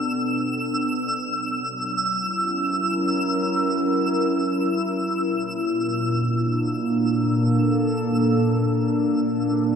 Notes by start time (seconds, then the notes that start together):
Already playing: B2 B3 D4 A4 E6
1.13 F#3
1.99 C#4 E4
2.51 A#4
5.28 A#2
5.99 D4
6.11 A#3
7.17 A4
9.45 G3